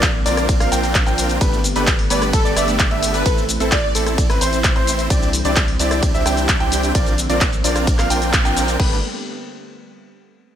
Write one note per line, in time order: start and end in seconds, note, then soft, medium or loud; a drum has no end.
0.00 0.23 A#1 loud
0.00 1.38 D3 medium
0.00 1.39 A#3 medium
0.00 1.37 C4 medium
0.00 kick loud
0.00 clap loud
0.00 closed hi-hat medium
0.00 ride medium
0.00 shaker soft
0.26 0.58 A#1 loud
0.26 0.58 C4 medium
0.26 0.58 D4 medium
0.26 0.58 F4 medium
0.26 0.58 A#4 medium
0.26 0.58 D5 medium
0.26 open hi-hat loud
0.26 shaker medium
0.37 cross-stick medium
0.37 closed hi-hat medium
0.37 shaker soft
0.49 kick loud
0.49 closed hi-hat medium
0.49 ride medium
0.49 shaker soft
0.60 0.70 A#1 loud
0.60 0.70 C4 loud
0.60 0.70 D4 medium
0.60 0.70 F4 medium
0.60 0.70 A#4 medium
0.60 0.70 F5 loud
0.60 cross-stick medium
0.60 open hi-hat medium
0.60 shaker soft
0.72 1.04 A#1 loud
0.72 1.04 C4 medium
0.72 1.04 D4 medium
0.72 1.04 F4 medium
0.72 1.04 A#4 medium
0.72 1.04 G5 loud
0.72 open hi-hat loud
0.72 shaker medium
0.83 closed hi-hat soft
0.83 shaker soft
0.95 kick loud
0.95 clap loud
0.95 closed hi-hat medium
0.95 ride medium
0.95 shaker soft
1.06 1.39 A#1 loud
1.06 1.38 C4 medium
1.06 1.38 D4 medium
1.06 1.38 F4 medium
1.06 1.38 A#4 medium
1.06 1.38 G5 loud
1.06 1.38 G5 medium
1.06 closed hi-hat soft
1.06 shaker soft
1.18 open hi-hat loud
1.18 shaker medium
1.29 closed hi-hat medium
1.29 shaker soft
1.41 1.73 G1 loud
1.41 3.24 G3 medium
1.41 1.59 A3 loud
1.41 5.07 A3 medium
1.41 1.59 B3 medium
1.41 3.24 B3 medium
1.41 1.59 D4 medium
1.41 1.59 G4 medium
1.41 1.59 B4 loud
1.41 kick loud
1.41 closed hi-hat medium
1.41 ride medium
1.41 shaker soft
1.53 shaker soft
1.64 open hi-hat loud
1.64 shaker medium
1.76 2.08 G1 loud
1.76 1.94 A3 loud
1.76 1.94 B3 medium
1.76 1.94 D4 medium
1.76 1.94 G4 medium
1.76 1.94 B4 loud
1.76 closed hi-hat medium
1.76 shaker soft
1.87 kick loud
1.87 clap loud
1.87 closed hi-hat medium
1.87 ride medium
1.87 shaker soft
1.99 open hi-hat medium
2.10 2.43 G1 loud
2.10 2.42 A3 medium
2.10 2.42 B3 medium
2.10 2.42 D4 medium
2.10 2.42 G4 medium
2.10 2.42 B4 medium
2.10 2.24 D5 medium
2.10 open hi-hat loud
2.10 shaker medium
2.22 cross-stick medium
2.22 closed hi-hat medium
2.22 shaker soft
2.33 2.47 A4 medium
2.33 kick loud
2.33 closed hi-hat medium
2.33 ride medium
2.33 shaker soft
2.45 2.54 G1 loud
2.45 2.54 A3 medium
2.45 2.54 B3 medium
2.45 2.54 D4 medium
2.45 2.54 G4 medium
2.45 2.54 D5 loud
2.45 shaker soft
2.56 2.89 G1 loud
2.56 2.88 A3 medium
2.56 2.88 B3 medium
2.56 2.88 D4 medium
2.56 2.88 G4 medium
2.56 2.70 D5 loud
2.56 2.88 E5 loud
2.56 cross-stick medium
2.56 open hi-hat loud
2.56 shaker medium
2.68 closed hi-hat medium
2.68 shaker soft
2.79 kick loud
2.79 clap loud
2.79 closed hi-hat medium
2.79 ride medium
2.79 shaker soft
2.91 3.24 G1 loud
2.91 3.23 A3 medium
2.91 3.23 B3 medium
2.91 3.23 D4 medium
2.91 3.23 G4 medium
2.91 3.23 E5 loud
2.91 3.23 E5 medium
2.91 closed hi-hat soft
3.03 open hi-hat loud
3.03 shaker medium
3.14 3.28 B4 loud
3.14 closed hi-hat medium
3.14 shaker soft
3.26 3.58 A1 loud
3.26 6.91 E3 medium
3.26 8.76 C4 medium
3.26 3.44 C4 loud
3.26 3.44 E4 medium
3.26 3.44 A4 loud
3.26 kick loud
3.26 closed hi-hat medium
3.26 ride medium
3.26 shaker soft
3.38 shaker soft
3.49 open hi-hat loud
3.49 shaker medium
3.60 3.93 A1 loud
3.60 3.78 C4 loud
3.60 3.78 E4 medium
3.60 3.78 A4 loud
3.60 closed hi-hat medium
3.60 shaker soft
3.72 3.79 D5 medium
3.72 kick loud
3.72 clap loud
3.72 closed hi-hat medium
3.72 ride medium
3.72 shaker soft
3.83 3.91 D5 medium
3.95 4.27 A1 loud
3.95 4.27 C4 medium
3.95 4.27 E4 medium
3.95 4.27 A4 medium
3.95 open hi-hat loud
3.95 shaker medium
4.07 cross-stick medium
4.07 closed hi-hat medium
4.07 shaker soft
4.18 kick loud
4.18 closed hi-hat medium
4.18 ride medium
4.18 shaker soft
4.30 4.39 A1 loud
4.30 4.39 C4 loud
4.30 4.39 E4 medium
4.30 4.39 B4 loud
4.30 cross-stick medium
4.30 open hi-hat medium
4.30 shaker soft
4.41 4.73 A1 loud
4.41 4.73 C4 medium
4.41 4.73 E4 medium
4.41 4.73 C5 loud
4.41 open hi-hat loud
4.41 shaker medium
4.53 closed hi-hat medium
4.53 shaker soft
4.64 kick loud
4.64 clap loud
4.64 closed hi-hat medium
4.64 ride medium
4.64 shaker soft
4.76 5.08 A1 loud
4.76 5.08 C4 medium
4.76 5.08 E4 medium
4.76 5.08 C5 loud
4.76 closed hi-hat soft
4.87 open hi-hat loud
4.87 shaker medium
4.99 closed hi-hat medium
4.99 shaker soft
5.10 5.43 C2 loud
5.10 8.76 D3 medium
5.10 5.28 C4 loud
5.10 5.29 D4 medium
5.10 5.29 E4 medium
5.10 5.29 G4 medium
5.10 5.29 D5 loud
5.10 kick loud
5.10 closed hi-hat medium
5.10 ride medium
5.10 shaker soft
5.23 shaker soft
5.33 open hi-hat loud
5.33 shaker medium
5.45 5.77 C2 loud
5.45 5.63 C4 loud
5.45 5.63 D4 medium
5.45 5.63 E4 medium
5.45 5.63 G4 medium
5.45 5.63 D5 loud
5.45 closed hi-hat medium
5.45 shaker soft
5.56 kick loud
5.56 clap loud
5.56 closed hi-hat medium
5.56 ride medium
5.56 shaker soft
5.68 open hi-hat medium
5.79 6.12 C2 loud
5.79 6.12 C4 medium
5.79 6.12 D4 medium
5.79 6.12 E4 medium
5.79 6.12 G4 medium
5.79 6.12 D5 medium
5.79 open hi-hat loud
5.79 shaker medium
5.91 cross-stick medium
5.91 closed hi-hat medium
5.91 shaker soft
6.03 kick loud
6.03 closed hi-hat medium
6.03 ride medium
6.03 shaker soft
6.14 6.23 C2 loud
6.14 6.24 C4 medium
6.14 6.24 D4 medium
6.14 6.24 E4 medium
6.14 6.24 G4 medium
6.14 6.23 E5 loud
6.14 6.24 E5 loud
6.14 shaker soft
6.26 6.58 C2 loud
6.26 6.58 C4 medium
6.26 6.58 D4 medium
6.26 6.58 E4 medium
6.26 6.58 G4 medium
6.26 6.58 G5 loud
6.26 cross-stick medium
6.26 open hi-hat loud
6.26 shaker medium
6.37 closed hi-hat medium
6.37 shaker soft
6.49 kick loud
6.49 clap loud
6.49 closed hi-hat medium
6.49 ride medium
6.49 shaker soft
6.60 6.93 C2 loud
6.60 6.92 C4 medium
6.60 6.92 D4 medium
6.60 6.92 E4 medium
6.60 6.92 G4 medium
6.60 6.92 G5 loud
6.60 closed hi-hat soft
6.72 open hi-hat loud
6.72 shaker medium
6.83 closed hi-hat medium
6.83 shaker soft
6.95 7.27 A#1 loud
6.95 8.78 A#3 medium
6.95 7.13 C4 loud
6.95 7.13 D4 medium
6.95 7.13 F4 medium
6.95 7.13 A#4 medium
6.95 7.13 D5 loud
6.95 kick loud
6.95 closed hi-hat medium
6.95 ride medium
6.95 shaker soft
7.06 closed hi-hat soft
7.06 shaker soft
7.18 open hi-hat loud
7.18 shaker medium
7.30 7.62 A#1 loud
7.30 7.48 C4 loud
7.30 7.48 D4 medium
7.30 7.48 F4 medium
7.30 7.48 A#4 medium
7.30 7.48 D5 loud
7.30 closed hi-hat medium
7.30 shaker soft
7.41 kick loud
7.41 clap loud
7.41 closed hi-hat medium
7.41 ride medium
7.41 shaker soft
7.53 closed hi-hat soft
7.53 shaker soft
7.64 7.97 A#1 loud
7.64 7.96 C4 medium
7.64 7.96 D4 medium
7.64 7.96 F4 medium
7.64 7.96 A#4 medium
7.64 7.96 D5 medium
7.64 open hi-hat loud
7.64 shaker medium
7.76 cross-stick medium
7.76 closed hi-hat medium
7.76 shaker soft
7.87 kick loud
7.87 closed hi-hat medium
7.87 ride medium
7.87 shaker soft
7.99 8.08 A#1 loud
7.99 8.08 C4 loud
7.99 8.08 D4 medium
7.99 8.08 F4 medium
7.99 8.08 A#4 medium
7.99 8.08 F5 loud
7.99 cross-stick medium
7.99 clap soft
7.99 open hi-hat medium
7.99 shaker soft
8.10 8.43 A#1 loud
8.10 8.42 C4 medium
8.10 8.42 D4 medium
8.10 8.42 F4 medium
8.10 8.42 A#4 medium
8.10 8.42 G5 loud
8.10 open hi-hat loud
8.10 shaker medium
8.22 closed hi-hat medium
8.22 shaker soft
8.33 kick loud
8.33 clap loud
8.33 closed hi-hat medium
8.33 ride medium
8.33 shaker soft
8.45 8.77 A#1 loud
8.45 8.77 C4 medium
8.45 8.77 D4 medium
8.45 8.77 F4 medium
8.45 8.77 A#4 medium
8.45 8.77 G5 loud
8.45 closed hi-hat soft
8.45 shaker soft
8.56 open hi-hat loud
8.56 shaker medium
8.68 closed hi-hat medium
8.68 shaker soft
8.80 9.01 G1 loud
8.80 9.01 G3 medium
8.80 9.01 A3 medium
8.80 8.97 A3 medium
8.80 8.97 B3 medium
8.80 9.01 B3 medium
8.80 8.97 D4 medium
8.80 8.97 G4 medium
8.80 8.97 B4 loud
8.80 8.97 B4 medium
8.80 kick loud
8.80 crash medium